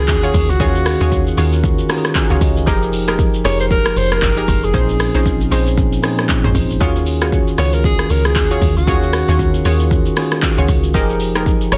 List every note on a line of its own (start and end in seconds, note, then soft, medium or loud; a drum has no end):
0.00 0.59 D#3 loud
0.00 0.60 C#4 loud
0.00 1.01 F4 loud
0.00 0.61 F#4 loud
0.00 0.52 G#4 loud
0.00 0.62 G#4 loud
0.08 0.31 D#2 loud
0.08 kick medium
0.08 clap loud
0.08 shaker medium
0.23 0.35 F4 medium
0.23 0.35 F#4 medium
0.23 0.35 G#4 medium
0.23 0.35 C#5 medium
0.23 shaker medium
0.34 0.47 D#2 loud
0.34 kick medium
0.34 open hi-hat soft
0.34 shaker medium
0.49 0.62 C#2 loud
0.49 1.27 F#4 medium
0.49 shaker medium
0.59 0.96 D#2 loud
0.59 0.92 D#3 loud
0.59 0.92 C#4 medium
0.59 0.76 F4 loud
0.59 0.76 F#4 medium
0.59 0.93 F#4 medium
0.59 0.76 G#4 medium
0.59 0.93 G#4 loud
0.59 0.76 C#5 loud
0.59 0.92 F5 loud
0.59 kick loud
0.59 shaker medium
0.75 shaker medium
0.86 cross-stick loud
0.86 open hi-hat medium
0.86 shaker medium
1.00 1.33 D#2 loud
1.00 1.31 D#3 medium
1.00 1.31 C#4 medium
1.00 1.13 F4 medium
1.00 1.31 F4 medium
1.00 1.13 F#4 medium
1.00 1.32 F#4 medium
1.00 1.13 G#4 medium
1.00 1.32 G#4 medium
1.00 1.13 C#5 medium
1.00 shaker medium
1.12 kick loud
1.12 shaker medium
1.27 shaker medium
1.37 1.83 D#2 loud
1.37 1.80 D#3 medium
1.37 1.81 C#4 medium
1.37 1.53 F4 medium
1.37 1.81 F4 medium
1.37 1.53 F#4 medium
1.37 1.81 F#4 medium
1.37 1.53 G#4 medium
1.37 1.82 A#4 loud
1.37 1.53 C#5 medium
1.37 open hi-hat medium
1.37 shaker medium
1.53 shaker medium
1.64 kick loud
1.64 shaker medium
1.79 shaker medium
1.89 2.53 D#3 loud
1.89 2.53 C#4 medium
1.89 2.54 F4 medium
1.89 2.54 F#4 medium
1.89 1.98 G4 medium
1.89 2.14 A#5 medium
1.89 cross-stick loud
1.89 open hi-hat medium
1.89 shaker medium
1.98 2.57 G#4 loud
2.05 cross-stick loud
2.05 shaker medium
2.15 2.40 G#5 medium
2.15 kick medium
2.15 clap loud
2.15 shaker medium
2.30 2.40 C#2 medium
2.30 2.42 F4 medium
2.30 2.42 F#4 medium
2.30 2.42 G#4 medium
2.30 2.42 C#5 medium
2.30 2.41 F5 medium
2.30 shaker medium
2.41 2.69 C#2 loud
2.41 2.56 C#5 medium
2.41 2.66 D#5 medium
2.41 kick loud
2.41 open hi-hat soft
2.41 shaker medium
2.57 2.68 A#4 medium
2.57 shaker medium
2.66 3.41 F1 loud
2.66 3.30 F3 loud
2.66 2.83 D#4 loud
2.66 3.31 D#4 loud
2.66 2.83 G4 medium
2.66 3.31 G4 loud
2.66 2.83 G#4 medium
2.66 3.31 G#4 loud
2.66 2.83 A#4 loud
2.66 3.32 A#4 loud
2.66 kick loud
2.66 shaker medium
2.82 shaker medium
2.93 open hi-hat medium
2.93 shaker medium
3.08 3.19 D#4 medium
3.08 3.20 G4 medium
3.08 3.20 G#4 medium
3.08 3.20 A#4 medium
3.08 cross-stick loud
3.08 shaker medium
3.19 kick loud
3.19 shaker medium
3.34 shaker medium
3.44 3.90 F1 loud
3.44 4.28 F3 medium
3.44 3.60 D#4 medium
3.44 4.28 D#4 medium
3.44 3.60 G4 medium
3.44 4.29 G4 medium
3.44 3.60 G#4 medium
3.44 4.29 G#4 medium
3.44 3.60 A#4 medium
3.44 4.29 A#4 medium
3.44 3.59 C#5 loud
3.44 cross-stick medium
3.44 open hi-hat medium
3.44 shaker medium
3.60 3.65 C5 loud
3.60 shaker medium
3.71 3.99 A#4 loud
3.71 kick loud
3.71 shaker medium
3.86 cross-stick loud
3.86 shaker medium
3.96 4.19 F1 medium
3.96 4.12 C5 loud
3.96 open hi-hat medium
3.96 shaker loud
4.12 4.66 A#4 loud
4.12 cross-stick loud
4.12 shaker medium
4.22 4.45 F#1 medium
4.22 kick medium
4.22 clap loud
4.22 shaker medium
4.37 4.49 D#4 medium
4.37 4.49 G4 medium
4.37 4.49 G#4 medium
4.37 4.49 A#4 medium
4.37 shaker medium
4.48 4.61 F#1 loud
4.48 kick medium
4.48 open hi-hat soft
4.48 shaker medium
4.63 4.72 F1 medium
4.63 5.41 G#4 medium
4.63 shaker medium
4.73 5.09 A#1 loud
4.73 5.05 A#2 loud
4.73 5.06 F3 medium
4.73 5.06 C4 medium
4.73 4.89 C#4 loud
4.73 5.06 C#4 medium
4.73 4.90 D#4 medium
4.73 5.07 D#4 loud
4.73 4.90 G#4 medium
4.73 5.07 G#4 loud
4.73 4.90 C5 loud
4.73 kick loud
4.73 shaker medium
4.89 shaker medium
5.00 cross-stick loud
5.00 open hi-hat medium
5.00 shaker loud
5.14 5.47 A#1 loud
5.14 5.45 A#2 medium
5.14 5.45 F3 medium
5.14 5.45 C4 medium
5.14 5.26 C#4 medium
5.14 5.45 C#4 medium
5.14 5.27 D#4 medium
5.14 5.46 D#4 medium
5.14 5.46 F4 medium
5.14 5.27 G#4 medium
5.14 5.27 C5 medium
5.14 shaker medium
5.26 kick loud
5.26 shaker medium
5.41 shaker medium
5.51 5.96 A#1 loud
5.51 5.94 A#2 medium
5.51 5.94 F3 medium
5.51 5.95 C4 medium
5.51 5.67 C#4 medium
5.51 5.95 C#4 medium
5.51 5.67 D#4 medium
5.51 5.95 D#4 medium
5.51 5.67 G#4 medium
5.51 5.96 G#4 loud
5.51 5.67 C5 medium
5.51 open hi-hat medium
5.51 shaker medium
5.67 shaker medium
5.78 kick loud
5.78 shaker medium
5.93 shaker medium
6.03 6.67 A#2 loud
6.03 6.67 F3 medium
6.03 6.67 C4 medium
6.03 6.67 C#4 medium
6.03 6.68 D#4 medium
6.03 6.68 G#4 loud
6.03 cross-stick loud
6.03 open hi-hat medium
6.03 shaker medium
6.19 cross-stick loud
6.19 shaker medium
6.29 kick medium
6.29 clap loud
6.29 shaker medium
6.44 6.53 G#1 loud
6.44 6.56 C#4 medium
6.44 6.56 D#4 medium
6.44 6.56 G#4 medium
6.44 6.56 C5 medium
6.44 mid tom loud
6.44 shaker medium
6.55 6.77 G#1 loud
6.55 kick medium
6.55 open hi-hat medium
6.55 shaker medium
6.70 shaker medium
6.80 7.54 D#2 loud
6.80 7.44 D#3 loud
6.80 7.45 C#4 loud
6.80 6.96 F4 loud
6.80 7.45 F4 loud
6.80 6.96 F#4 medium
6.80 7.45 F#4 loud
6.80 6.96 G#4 medium
6.80 7.46 G#4 loud
6.80 6.97 C#5 loud
6.80 kick loud
6.80 shaker medium
6.96 shaker medium
7.07 open hi-hat medium
7.07 shaker loud
7.21 7.33 F4 medium
7.21 7.33 F#4 medium
7.21 7.33 G#4 medium
7.21 7.34 C#5 medium
7.21 cross-stick loud
7.21 shaker medium
7.32 kick loud
7.32 shaker medium
7.47 shaker medium
7.58 8.03 C#2 medium
7.58 8.42 D#3 medium
7.58 8.42 C#4 medium
7.58 7.74 F4 medium
7.58 8.42 F4 medium
7.58 7.74 F#4 medium
7.58 8.43 F#4 medium
7.58 7.74 G#4 medium
7.58 8.43 G#4 medium
7.58 7.74 C#5 medium
7.58 7.75 C#5 loud
7.58 cross-stick medium
7.58 open hi-hat medium
7.58 shaker medium
7.73 7.84 A#4 medium
7.73 shaker medium
7.84 8.12 G#4 loud
7.84 kick loud
7.84 shaker medium
7.99 cross-stick loud
7.99 shaker medium
8.10 8.37 C#2 loud
8.10 8.27 A#4 loud
8.10 open hi-hat medium
8.10 shaker loud
8.25 8.77 G#4 medium
8.25 cross-stick loud
8.25 shaker medium
8.36 8.58 D#2 loud
8.36 kick medium
8.36 clap loud
8.36 shaker medium
8.51 8.63 F4 medium
8.51 8.63 F#4 medium
8.51 8.63 G#4 medium
8.51 8.63 C#5 medium
8.51 shaker medium
8.62 8.75 D#2 loud
8.62 kick medium
8.62 open hi-hat soft
8.62 shaker medium
8.77 8.89 C#2 medium
8.77 9.51 F#4 medium
8.77 shaker medium
8.87 9.23 D#2 loud
8.87 9.19 D#3 loud
8.87 9.20 C#4 medium
8.87 9.03 F4 loud
8.87 9.03 F#4 medium
8.87 9.20 F#4 loud
8.87 9.03 G#4 medium
8.87 9.21 G#4 loud
8.87 9.04 C#5 loud
8.87 9.20 F5 medium
8.87 kick loud
8.87 shaker medium
9.02 shaker medium
9.13 cross-stick loud
9.13 open hi-hat medium
9.13 shaker loud
9.28 9.60 D#2 loud
9.28 9.59 D#3 medium
9.28 9.59 C#4 medium
9.28 9.40 F4 medium
9.28 9.59 F4 medium
9.28 9.40 F#4 medium
9.28 9.60 F#4 medium
9.28 9.40 G#4 medium
9.28 9.60 A#4 medium
9.28 9.40 C#5 medium
9.28 shaker medium
9.39 kick loud
9.39 shaker medium
9.54 shaker medium
9.65 10.10 D#2 loud
9.65 10.08 D#3 medium
9.65 10.08 C#4 medium
9.65 9.81 F4 medium
9.65 10.09 F4 medium
9.65 9.81 F#4 medium
9.65 10.09 F#4 medium
9.65 9.81 G#4 medium
9.65 10.09 G#4 loud
9.65 9.81 C#5 medium
9.65 open hi-hat medium
9.65 shaker medium
9.80 shaker medium
9.91 kick loud
9.91 shaker medium
10.06 shaker medium
10.16 10.80 D#3 medium
10.16 10.81 C#4 medium
10.16 10.81 F4 medium
10.16 10.81 F#4 medium
10.16 10.82 G#4 loud
10.16 cross-stick loud
10.16 open hi-hat medium
10.16 shaker medium
10.32 cross-stick loud
10.32 shaker medium
10.42 kick medium
10.42 clap loud
10.42 shaker medium
10.58 10.67 C#2 medium
10.58 10.70 F4 medium
10.58 10.70 F#4 medium
10.58 10.70 G#4 medium
10.58 10.70 C#5 medium
10.58 shaker medium
10.68 10.96 C#2 loud
10.68 kick medium
10.68 open hi-hat soft
10.68 shaker medium
10.84 shaker medium
10.94 11.68 F1 loud
10.94 11.58 F3 loud
10.94 11.10 D#4 loud
10.94 11.58 D#4 loud
10.94 11.10 G4 medium
10.94 11.59 G4 loud
10.94 11.10 G#4 medium
10.94 11.59 G#4 loud
10.94 11.10 A#4 loud
10.94 11.59 A#4 loud
10.94 kick loud
10.94 shaker medium
11.09 shaker medium
11.20 open hi-hat medium
11.20 shaker loud
11.35 11.47 D#4 medium
11.35 11.47 G4 medium
11.35 11.47 G#4 medium
11.35 11.47 A#4 medium
11.35 cross-stick loud
11.35 shaker medium
11.46 kick loud
11.46 shaker medium
11.61 shaker medium
11.71 11.78 F1 loud
11.71 11.78 F3 medium
11.71 11.78 D#4 medium
11.71 11.78 G4 medium
11.71 11.78 G#4 medium
11.71 11.78 A#4 medium
11.71 11.78 C#5 loud
11.71 cross-stick medium
11.71 open hi-hat medium
11.71 shaker medium